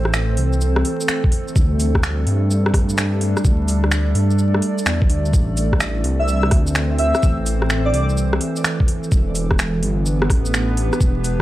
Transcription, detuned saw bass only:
0.00 0.37 A1 loud
0.37 0.84 C2 medium
1.56 2.25 D2 loud
2.27 2.73 G2 medium
2.74 3.35 G2 medium
3.45 4.14 D2 loud
4.15 4.61 G2 medium
4.86 5.08 E2 medium
5.09 5.32 D2 loud
5.33 6.03 A1 loud
6.04 6.50 C2 medium
6.52 7.13 D2 medium
7.23 7.93 A1 loud
7.94 8.40 C2 medium
9.12 9.82 E1 loud
9.83 10.29 G1 medium
10.30 10.90 A1 medium
11.01 11.42 E1 loud

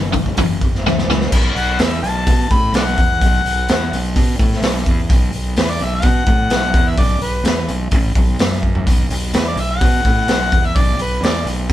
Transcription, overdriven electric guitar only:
0.00 0.12 F#2 medium
0.00 0.12 D#3 medium
0.13 0.35 F#2 medium
0.13 0.35 D#3 medium
0.39 0.81 F#2 medium
0.39 0.81 E3 medium
0.86 1.07 F#2 medium
0.86 1.07 E3 medium
1.10 1.30 F#2 medium
1.10 1.31 E3 medium

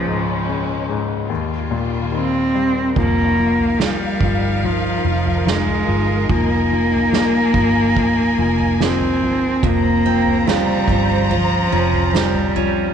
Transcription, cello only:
0.00 0.68 F3 medium
2.16 2.94 C4 medium
2.99 3.82 A#3 medium
3.81 4.67 G3 medium
4.65 5.50 F3 medium
5.48 6.31 G#3 medium
6.32 8.85 A#3 medium
8.84 9.67 C4 medium
9.65 10.51 A#3 medium
10.50 11.35 G3 medium
11.34 12.18 F3 medium
12.16 12.94 G3 medium

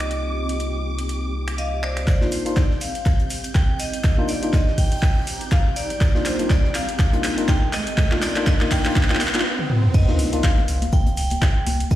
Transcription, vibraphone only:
0.00 0.80 D#5 medium
1.58 1.84 D#5 loud
1.58 1.81 F5 loud
1.83 2.29 C5 medium
1.83 2.29 D5 medium
2.32 2.55 C5 medium
2.57 2.82 D5 medium
2.81 3.27 F5 medium
3.55 3.78 G5 loud
3.79 4.30 D#5 medium
4.29 4.54 D5 medium
4.53 4.79 D#5 medium
4.78 5.24 G5 medium
5.52 5.77 F5 loud
5.76 6.27 D5 loud
6.25 6.51 C5 medium
6.50 6.75 D5 medium
6.75 7.20 F5 loud
7.48 7.74 G5 loud
7.73 8.19 D#5 loud
8.22 8.48 D5 medium
8.47 8.72 D#5 medium
8.71 9.17 G5 loud
9.94 10.40 D#5 medium
10.44 10.94 F5 loud
10.93 11.16 G5 loud
11.18 11.87 G5 loud
11.91 11.95 D#5 medium

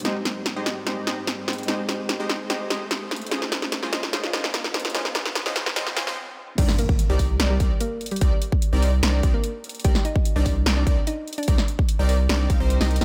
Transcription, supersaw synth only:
0.05 0.17 G#3 loud
0.05 0.17 D#4 medium
0.05 0.17 G4 medium
0.05 0.17 C5 medium
0.05 0.17 D#5 loud
0.56 0.75 G#3 loud
0.56 0.75 D#4 medium
0.56 0.75 G4 medium
0.56 0.75 C5 medium
0.56 0.75 D#5 loud
0.87 1.05 G#3 medium
0.87 1.05 D#4 medium
0.87 1.05 G4 medium
0.87 1.05 C5 medium
0.87 1.05 D#5 medium
1.07 1.19 G#3 medium
1.07 1.19 D#4 medium
1.07 1.19 G4 medium
1.07 1.19 C5 medium
1.07 1.19 D#5 loud
1.68 1.80 G#3 loud
1.68 1.80 D#4 medium
1.68 1.80 G4 medium
1.68 1.80 C5 medium
1.68 1.80 D#5 loud
2.20 2.38 G#3 loud
2.20 2.38 D#4 medium
2.20 2.38 G4 medium
2.20 2.38 C5 medium
2.20 2.38 D#5 loud
2.50 2.68 G#3 medium
2.50 2.68 D#4 medium
2.50 2.68 G4 medium
2.50 2.68 C5 medium
2.50 2.68 D#5 medium
2.71 2.82 G#3 medium
2.71 2.82 D#4 medium
2.71 2.82 G4 medium
2.71 2.82 C5 medium
2.71 2.82 D#5 loud
3.32 3.43 G#3 loud
3.32 3.43 C#4 medium
3.32 3.43 F4 medium
3.32 3.43 C5 medium
3.32 3.43 D#5 loud
3.83 4.01 G#3 loud
3.83 4.01 C#4 medium
3.83 4.01 F4 medium
3.83 4.01 C5 medium
3.83 4.01 D#5 loud
4.13 4.31 G#3 medium
4.13 4.31 C#4 medium
4.13 4.31 F4 medium
4.13 4.31 C5 medium
4.13 4.31 D#5 medium
4.34 4.45 G#3 medium
4.34 4.45 C#4 medium
4.34 4.45 F4 medium
4.34 4.45 C5 medium
4.34 4.45 D#5 loud
4.95 5.06 G#3 loud
4.95 5.06 C#4 medium
4.95 5.06 F4 medium
4.95 5.06 C5 medium
4.95 5.07 D#5 loud
5.46 5.64 G#3 loud
5.46 5.64 C#4 medium
5.46 5.64 F4 medium
5.46 5.64 C5 medium
5.46 5.64 D#5 loud
5.76 5.94 G#3 medium
5.76 5.95 C#4 medium
5.76 5.95 F4 medium
5.76 5.94 C5 medium
5.76 5.94 D#5 medium
5.97 6.06 G#3 medium
5.97 6.06 C#4 medium
5.97 6.06 F4 medium
5.97 6.06 C5 medium
5.97 6.06 G#5 loud
6.07 6.17 G#3 loud
6.07 6.17 C#4 medium
6.07 6.17 F4 medium
6.07 6.17 C5 medium
6.07 6.17 D#5 loud
6.58 6.70 C4 medium
6.58 6.70 D#4 medium
6.58 6.70 G4 medium
6.58 6.70 A#4 medium
6.58 6.70 D5 loud
7.10 7.28 C4 loud
7.10 7.28 D#4 medium
7.10 7.28 G4 medium
7.10 7.28 A#4 medium
7.10 7.28 D5 loud
7.40 7.58 C4 medium
7.40 7.58 D#4 medium
7.40 7.58 G4 medium
7.40 7.58 A#4 medium
7.40 7.58 D5 medium
7.60 7.72 C4 medium
7.60 7.72 D#4 medium
7.60 7.72 G4 medium
7.60 7.72 A#4 medium
7.60 7.72 D5 loud
8.21 8.33 C4 loud
8.21 8.33 D#4 medium
8.21 8.33 G4 medium
8.21 8.33 A#4 medium
8.21 8.33 D5 loud
8.73 8.91 C4 loud
8.73 8.91 D#4 medium
8.73 8.91 G4 medium
8.73 8.91 A#4 medium
8.73 8.91 D5 loud
9.03 9.21 C4 medium
9.03 9.21 D#4 medium
9.03 9.21 G4 medium
9.03 9.21 A#4 medium
9.03 9.21 D5 medium
9.23 9.35 C4 medium
9.23 9.35 D#4 medium
9.23 9.35 G4 medium
9.23 9.35 A#4 medium
9.23 9.35 D5 loud
9.85 9.96 C4 loud
9.85 9.96 D#4 medium
9.85 9.96 G4 medium
9.85 9.96 A#4 medium
9.85 9.96 D5 loud
10.36 10.54 C4 loud
10.36 10.54 D#4 medium
10.36 10.54 G4 medium
10.36 10.54 A#4 medium
10.36 10.54 D5 loud
10.66 10.84 C4 medium
10.66 10.84 D#4 medium
10.66 10.84 G4 medium
10.66 10.84 A#4 medium
10.66 10.84 D5 medium
10.87 10.98 C4 medium
10.87 10.98 D#4 medium
10.87 10.98 G4 medium
10.87 10.98 A#4 medium
10.87 10.98 D5 loud
11.48 11.60 C4 loud
11.48 11.60 D#4 medium
11.48 11.60 G4 medium
11.48 11.60 A#4 medium
11.48 11.60 D5 loud
11.99 12.18 C4 loud
11.99 12.18 D#4 medium
11.99 12.18 G4 medium
11.99 12.17 A#4 medium
11.99 12.18 D5 loud
12.29 12.48 C4 medium
12.29 12.48 D#4 medium
12.29 12.48 G4 medium
12.29 12.48 A#4 medium
12.29 12.48 D5 medium
12.50 12.59 C4 medium
12.50 12.59 D#4 medium
12.50 12.59 G4 medium
12.50 12.59 A#4 medium
12.50 12.59 F5 loud
12.60 12.78 C4 loud
12.60 12.78 D#4 medium
12.60 12.78 G4 medium
12.60 12.78 A#4 medium
12.60 12.78 C5 loud
12.81 12.99 C4 medium
12.81 12.99 D#4 medium
12.81 12.99 G4 medium
12.81 12.99 A#4 medium
12.81 12.99 D#5 loud
13.01 13.05 C4 medium
13.01 13.05 D#4 medium
13.01 13.05 G4 medium
13.01 13.05 A#4 medium
13.01 13.05 F5 medium

